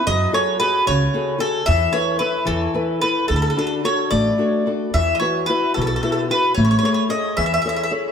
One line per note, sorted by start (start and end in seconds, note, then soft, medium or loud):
0.07 0.25 F#2 medium
0.07 0.59 F#3 medium
0.07 0.32 D#5 medium
0.32 0.58 F#4 soft
0.32 0.58 G#4 soft
0.32 0.59 A4 medium
0.32 0.59 C#5 medium
0.60 1.03 F#4 soft
0.60 1.03 G#4 soft
0.60 1.04 A4 soft
0.60 0.85 B4 medium
0.86 1.05 C#2 medium
0.86 1.39 C#3 medium
0.86 1.37 C#5 medium
1.14 1.37 F#4 soft
1.14 1.38 G#4 soft
1.14 1.38 A4 soft
1.38 1.61 F#4 soft
1.38 1.61 G#4 soft
1.38 1.61 A4 soft
1.38 1.65 A4 medium
1.66 1.86 E2 medium
1.66 2.20 E3 medium
1.66 1.95 E5 medium
1.92 2.19 E4 soft
1.92 2.19 A4 soft
1.92 2.19 B4 medium
1.92 2.18 C#5 medium
2.19 2.64 E4 soft
2.19 2.64 A4 soft
2.19 2.45 B4 medium
2.19 2.64 B4 soft
2.45 2.66 E2 medium
2.45 2.99 E3 medium
2.45 2.98 A4 medium
2.74 3.02 E4 soft
2.74 3.02 A4 soft
2.74 3.02 B4 soft
3.01 3.25 E4 soft
3.01 3.25 A4 soft
3.01 3.27 B4 medium
3.01 3.25 B4 soft
3.28 3.48 D2 medium
3.28 3.84 D3 medium
3.28 3.35 A4 medium
3.36 3.41 A4 medium
3.42 3.49 A4 medium
3.50 3.57 A4 medium
3.57 3.83 D4 soft
3.57 3.83 F#4 soft
3.57 3.83 A4 soft
3.57 3.66 A4 medium
3.67 3.74 A4 medium
3.84 4.29 D4 soft
3.84 4.29 F#4 soft
3.84 4.29 A4 soft
3.84 4.10 C#5 medium
4.11 4.30 A1 medium
4.11 4.65 A3 soft
4.11 4.70 D5 medium
4.38 4.66 D4 soft
4.38 4.66 F#4 soft
4.38 4.66 A4 soft
4.67 4.89 D4 soft
4.67 4.89 F#4 soft
4.67 4.89 A4 soft
4.94 5.13 E2 medium
4.94 5.48 E3 medium
4.94 5.16 E5 medium
5.15 5.19 D#5 medium
5.19 5.48 E4 soft
5.19 5.49 F#4 soft
5.19 5.49 B4 soft
5.19 5.46 C#5 medium
5.46 5.93 E4 soft
5.46 5.94 F#4 soft
5.46 5.73 B4 medium
5.46 5.94 B4 soft
5.74 5.95 B1 medium
5.74 6.30 B2 medium
5.74 5.80 A4 medium
5.81 5.86 A4 medium
5.87 5.95 A4 medium
5.96 6.02 A4 medium
6.03 6.29 E4 soft
6.03 6.30 F#4 soft
6.03 6.11 A4 medium
6.03 6.29 B4 soft
6.12 6.20 A4 medium
6.30 6.52 E4 soft
6.30 6.53 F#4 soft
6.30 6.52 B4 soft
6.30 6.54 B4 medium
6.54 6.76 A1 medium
6.54 7.10 A3 medium
6.54 6.63 C#5 medium
6.65 6.70 C#5 medium
6.71 6.77 C#5 medium
6.79 6.84 C#5 medium
6.83 7.08 G#4 soft
6.83 7.09 A4 soft
6.83 7.10 C#5 medium
6.83 6.93 C#5 medium
6.94 7.02 C#5 medium
7.09 7.54 G#4 soft
7.09 7.54 A4 soft
7.09 7.55 C#5 soft
7.09 7.36 D#5 medium
7.37 7.56 E2 medium
7.37 7.91 E3 medium
7.37 7.45 E5 medium
7.46 7.53 E5 medium
7.54 7.61 E5 medium
7.62 7.90 G#4 soft
7.62 7.91 A4 soft
7.62 7.68 E5 medium
7.66 7.90 C#5 soft
7.66 7.75 E5 medium
7.76 7.82 E5 medium
7.83 7.90 E5 medium
7.91 8.12 G#4 soft
7.91 8.12 A4 soft
7.91 8.12 C#5 soft